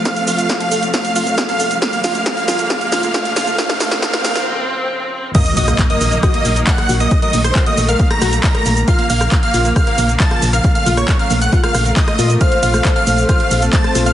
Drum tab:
CC |----------------|----------------|----------------|x---------------|
RD |----------------|----------------|----------------|----------------|
HH |xxoxxxoxxxoxxxox|xxoxxxoxxxoxxxox|xxoxxxox--------|xxoxxxoxxxoxxxox|
SH |xxxxxxxxxxxxxxxx|xxxxxxxxxxxxxxxx|xxxxxxxx--------|x-xxx-xxx-xxx-xx|
CP |----------------|----------------|----------------|----x-------x---|
SD |o---o---o---o---|o-o-o-o-o-o-o-o-|oooooooo--------|---r----r----r--|
BD |o---o---o---o---|o---o---o---o---|o-o-o-----------|o---o---o---o---|

CC |----------------|----------------|----------------|----------------|
RD |----------------|----------------|----------------|x-x-x-x-x-x-x-x-|
HH |xxoxxxoxxxoxxxox|xxoxxxoxxxoxxxox|xxoxxxoxxxoxxxox|xxoxxxoxxxoxxxox|
SH |x-xxx-xxx-xxx-xx|x-xxx-xxx-xxx-xx|x-xxx-xxx-xxx-xx|x-xxx-xxx-xxx-xx|
CP |----x-------x---|----x-------x---|----x-------x---|----x-------x---|
SD |---r-----rr--r--|---r----r----r--|---r-----rr--r--|---r----r----r--|
BD |o---o---o---o---|o---o---o---o---|o---o---o---o---|o---o---o---o---|